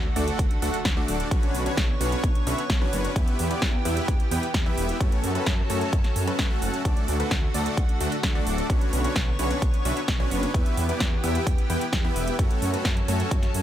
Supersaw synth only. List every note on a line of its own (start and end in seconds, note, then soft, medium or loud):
0.16 0.40 A3 medium
0.16 0.40 D4 medium
0.16 0.40 F#4 medium
0.16 0.40 A4 medium
0.16 0.40 D5 loud
0.62 0.77 A3 medium
0.62 0.77 D4 medium
0.62 0.77 F#4 medium
0.62 0.77 A4 medium
0.62 0.77 F#5 medium
0.97 1.29 A3 loud
0.97 1.29 D4 medium
0.97 1.29 F#4 medium
0.97 1.29 A4 medium
0.97 1.29 D5 loud
1.31 1.63 C#4 medium
1.31 1.63 D4 medium
1.31 1.63 F#4 medium
1.31 1.63 B4 medium
1.31 1.63 C#5 medium
1.66 1.81 C#4 medium
1.66 1.81 D4 medium
1.66 1.81 F#4 medium
1.66 1.81 B4 medium
1.66 1.81 C#5 loud
2.01 2.24 C#4 loud
2.01 2.24 D4 medium
2.01 2.24 F#4 medium
2.01 2.24 B4 medium
2.01 2.24 C#5 loud
2.47 2.62 C#4 medium
2.47 2.62 D4 medium
2.47 2.62 F#4 medium
2.47 2.62 B4 medium
2.47 2.62 E5 medium
2.81 3.13 C#4 loud
2.81 3.13 D4 medium
2.81 3.13 F#4 medium
2.81 3.13 B4 medium
2.81 3.13 C#5 loud
3.16 3.48 B3 medium
3.16 3.48 E4 medium
3.16 3.48 G4 medium
3.16 3.48 B4 medium
3.16 3.48 E5 medium
3.51 3.65 B3 medium
3.51 3.65 E4 medium
3.51 3.65 G4 medium
3.51 3.65 B4 medium
3.51 3.66 D5 loud
3.85 4.09 B3 medium
3.85 4.09 E4 medium
3.85 4.09 G4 medium
3.85 4.09 B4 medium
3.85 4.09 E5 loud
4.31 4.46 B3 medium
4.31 4.46 E4 medium
4.31 4.46 G4 medium
4.31 4.46 B4 medium
4.31 4.46 G5 medium
4.66 4.98 B3 loud
4.66 4.98 E4 medium
4.66 4.98 G4 medium
4.66 4.98 B4 medium
4.66 4.98 E5 loud
5.01 5.32 A3 medium
5.01 5.32 C#4 medium
5.01 5.32 F#4 medium
5.01 5.32 A4 medium
5.01 5.32 C#5 medium
5.35 5.50 A3 medium
5.35 5.50 C#4 medium
5.35 5.50 F#4 medium
5.35 5.50 A4 medium
5.35 5.50 B4 loud
5.70 5.94 A3 medium
5.70 5.94 C#4 medium
5.70 5.94 F#4 medium
5.70 5.94 A4 medium
5.70 5.94 C#5 loud
6.27 6.48 A3 medium
6.27 6.48 C#4 medium
6.27 6.48 F#4 medium
6.27 6.48 A4 medium
6.27 6.48 B4 loud
6.50 6.82 A3 loud
6.50 6.82 C#4 medium
6.50 6.82 F#4 medium
6.50 6.82 A4 medium
6.50 6.82 F#5 loud
6.85 7.17 A3 medium
6.85 7.17 D4 medium
6.85 7.17 F#4 medium
6.85 7.17 A4 medium
6.85 7.17 D5 medium
7.20 7.35 A3 medium
7.20 7.35 D4 medium
7.20 7.35 F#4 medium
7.20 7.35 A4 medium
7.20 7.35 B4 loud
7.54 7.78 A3 medium
7.54 7.78 D4 medium
7.54 7.78 F#4 medium
7.54 7.78 A4 medium
7.54 7.78 D5 loud
8.01 8.15 A3 medium
8.01 8.15 D4 medium
8.01 8.15 F#4 medium
8.01 8.15 A4 medium
8.01 8.15 F#5 medium
8.35 8.67 A3 loud
8.35 8.67 D4 medium
8.35 8.67 F#4 medium
8.35 8.67 A4 medium
8.35 8.67 D5 loud
8.70 9.02 C#4 medium
8.70 9.02 D4 medium
8.70 9.02 F#4 medium
8.70 9.02 B4 medium
8.70 9.02 C#5 medium
9.04 9.19 C#4 medium
9.04 9.19 D4 medium
9.04 9.19 F#4 medium
9.04 9.19 B4 medium
9.04 9.19 C#5 loud
9.39 9.63 C#4 loud
9.39 9.63 D4 medium
9.39 9.63 F#4 medium
9.39 9.63 B4 medium
9.39 9.63 C#5 loud
9.85 10.00 C#4 medium
9.85 10.00 D4 medium
9.85 10.00 F#4 medium
9.85 10.00 B4 medium
9.85 10.00 E5 medium
10.20 10.52 C#4 loud
10.20 10.52 D4 medium
10.20 10.52 F#4 medium
10.20 10.52 B4 medium
10.20 10.52 C#5 loud
10.54 10.86 B3 medium
10.54 10.86 E4 medium
10.54 10.86 G4 medium
10.54 10.86 B4 medium
10.54 10.86 E5 medium
10.89 11.04 B3 medium
10.89 11.04 E4 medium
10.89 11.04 G4 medium
10.89 11.04 B4 medium
10.89 11.04 D5 loud
11.23 11.47 B3 medium
11.23 11.48 E4 medium
11.23 11.47 G4 medium
11.23 11.47 B4 medium
11.23 11.48 E5 loud
11.70 11.85 B3 medium
11.70 11.85 E4 medium
11.70 11.85 G4 medium
11.70 11.85 B4 medium
11.70 11.85 G5 medium
12.04 12.36 B3 loud
12.04 12.36 E4 medium
12.04 12.36 G4 medium
12.04 12.36 B4 medium
12.04 12.36 E5 loud
12.39 12.71 A3 medium
12.39 12.71 C#4 medium
12.39 12.71 F#4 medium
12.39 12.71 A4 medium
12.39 12.71 C#5 medium
12.74 12.89 A3 medium
12.74 12.89 C#4 medium
12.74 12.89 F#4 medium
12.74 12.89 A4 medium
12.74 12.89 B4 loud
13.08 13.32 A3 medium
13.08 13.32 C#4 medium
13.08 13.32 F#4 medium
13.08 13.32 A4 medium
13.08 13.32 C#5 loud